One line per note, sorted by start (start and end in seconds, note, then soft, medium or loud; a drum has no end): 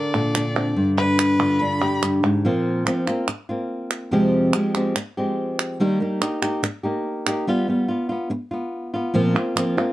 0.00 1.38 D3 medium
0.00 0.35 D4 medium
0.00 0.15 A#4 medium
0.00 0.84 D5 medium
0.14 0.74 A#2 medium
0.14 0.75 A4 medium
0.35 0.75 D4 medium
0.35 clap medium
0.56 0.74 C4 medium
0.76 2.01 G2 medium
0.98 1.60 D4 medium
0.98 1.61 B4 loud
1.19 clap medium
1.39 1.80 D3 medium
1.39 1.82 F4 medium
1.60 2.42 D4 medium
1.60 2.02 B5 medium
1.82 2.42 D3 medium
1.82 2.42 G4 medium
2.02 2.23 G2 medium
2.02 clap medium
2.23 2.44 G#2 medium
2.45 2.85 A#2 medium
2.45 2.85 F3 medium
2.45 2.85 A#3 medium
2.45 2.86 C4 medium
2.45 2.86 F4 medium
2.86 3.06 F3 medium
2.86 3.06 A#3 soft
2.86 3.07 C4 medium
2.86 3.06 F4 medium
2.86 clap medium
3.07 3.27 A#3 soft
3.07 3.28 C4 medium
3.07 3.27 F4 medium
3.07 clap medium
3.28 muted nylon-string guitar stroke medium
3.28 clap medium
3.49 4.12 A#3 soft
3.49 4.11 C4 soft
3.49 4.11 F4 medium
3.91 clap medium
4.11 4.53 F2 medium
4.11 4.53 C3 medium
4.11 4.53 F3 medium
4.11 4.53 G#3 medium
4.11 4.53 C4 medium
4.11 4.53 G4 medium
4.53 4.74 F3 soft
4.53 4.74 G#3 medium
4.53 4.74 C4 medium
4.53 4.73 G4 medium
4.53 clap medium
4.75 4.95 F3 soft
4.75 4.95 G#3 soft
4.75 4.95 C4 medium
4.75 4.95 G4 medium
4.75 clap medium
4.96 muted nylon-string guitar stroke medium
4.96 clap medium
5.17 5.80 F3 soft
5.17 5.79 G#3 soft
5.17 5.79 C4 soft
5.17 5.81 G4 medium
5.59 clap medium
5.80 6.00 D#3 medium
5.80 5.99 G3 medium
5.80 6.00 A#3 medium
5.80 6.00 D#4 medium
5.80 6.00 G4 medium
6.00 6.20 G3 medium
6.00 6.21 A#3 medium
6.00 6.21 D#4 medium
6.00 6.20 G4 medium
6.21 6.42 A#3 soft
6.21 6.42 D#4 medium
6.21 6.41 G4 medium
6.21 clap medium
6.42 6.62 A#3 soft
6.42 6.63 D#4 medium
6.42 6.62 G4 medium
6.42 clap medium
6.63 muted nylon-string guitar stroke medium
6.63 clap medium
6.83 7.26 A#3 soft
6.83 7.25 D#4 soft
6.83 7.25 G4 medium
7.27 7.47 A#3 medium
7.27 7.47 D#4 soft
7.27 7.47 G4 medium
7.27 clap medium
7.47 7.67 G3 medium
7.47 7.67 B3 medium
7.47 7.68 F4 medium
7.68 7.88 G3 soft
7.68 7.89 B3 medium
7.68 7.87 F4 medium
7.88 8.10 B3 soft
7.88 8.08 F4 medium
8.09 8.29 B3 soft
8.09 8.30 F4 medium
8.30 muted nylon-string guitar stroke medium
8.51 8.94 B3 soft
8.51 8.92 F4 soft
8.94 9.14 B3 soft
8.94 9.14 F4 medium
9.14 9.35 A#2 medium
9.14 9.35 F3 medium
9.14 9.35 A#3 medium
9.14 9.35 C4 medium
9.14 9.34 F4 medium
9.35 9.55 A#3 soft
9.35 9.56 C4 medium
9.35 9.56 F4 medium
9.56 9.77 F3 medium
9.56 9.77 A#3 medium
9.56 9.77 C4 medium
9.56 9.76 F4 medium
9.56 clap medium
9.77 9.93 A#3 soft
9.77 9.93 C4 medium
9.77 9.93 F4 medium